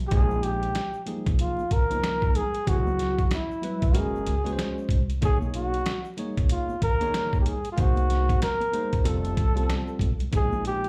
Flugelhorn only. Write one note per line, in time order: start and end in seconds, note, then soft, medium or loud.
0.07 0.15 G4 medium
0.14 0.45 G#4 loud
0.43 1.07 G4 loud
1.40 1.74 F4 medium
1.73 2.38 A#4 loud
2.36 2.70 G#4 loud
2.68 3.31 F#4 loud
3.34 3.99 E4 medium
3.97 4.92 G#4 medium
5.25 5.39 G#4 loud
5.55 6.15 F#4 loud
6.51 6.80 F4 medium
6.83 7.37 A#4 loud
7.41 7.48 G4 medium
7.47 7.71 G#4 medium
7.72 7.81 F4 medium
7.79 8.42 F#4 loud
8.43 9.02 A#4 loud
9.02 9.10 A#4 medium
9.08 10.02 A4 medium
10.36 10.64 G#4 loud
10.67 10.89 G4 loud